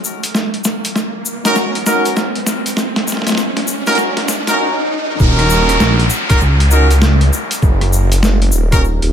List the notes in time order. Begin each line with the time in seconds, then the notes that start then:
Already playing: riser
0.04 shaker
0.23 closed hi-hat, shaker
0.35 snare, shaker
0.54 closed hi-hat
0.64 snare, shaker
0.85 closed hi-hat, shaker
0.96 snare, shaker
1.26 shaker
1.45 C#4 D#4 F#4 A#4, snare, closed hi-hat, shaker
1.55 snare, shaker
1.75 closed hi-hat
1.86 C#4 D#4 F#4 A#4, snare, shaker
2.05 closed hi-hat, shaker
2.16 snare, shaker
2.35 closed hi-hat
2.46 snare, shaker
2.66 closed hi-hat, shaker
2.77 snare, shaker
2.96 snare, closed hi-hat
3.07 snare, shaker
3.12 snare
3.17 snare
3.22 snare
3.27 snare, closed hi-hat, shaker
3.29 snare
3.32 snare
3.35 snare
3.38 snare, shaker
3.57 snare, closed hi-hat
3.67 shaker
3.86 C#4 D#4 F#4 A#4, snare, closed hi-hat, shaker
3.90 closed hi-hat
3.92 closed hi-hat
3.95 snare, closed hi-hat, swell, shaker
4.17 snare, closed hi-hat
4.28 snare, shaker
4.47 C#4 D#4 F#4 A#4, snare, closed hi-hat, shaker
5.20 D#1 C#4 D#4 F#4 A#4, kick, downlifter, shaker
5.39 cross-stick, closed hi-hat
5.50 shaker
5.69 cross-stick, closed hi-hat, shaker
5.80 A#1, snare, shaker
6.00 closed hi-hat
6.10 shaker
6.30 C#4 D#4 F#4 A#4, kick, cross-stick, closed hi-hat, shaker
6.41 C#2, shaker
6.60 closed hi-hat
6.71 C#4 D#4 F#4 A#4, shaker
6.91 closed hi-hat, shaker
7.02 snare, shaker
7.21 closed hi-hat
7.33 shaker
7.51 closed hi-hat, shaker
7.62 F#1, kick, shaker
7.81 cross-stick, closed hi-hat
7.93 shaker
8.12 closed hi-hat, shaker
8.23 snare, shaker
8.42 closed hi-hat
8.52 D#1, shaker
8.72 C#4 D#4 F#4 A#4, kick, cross-stick, closed hi-hat, shaker
8.84 shaker
9.02 D#1, closed hi-hat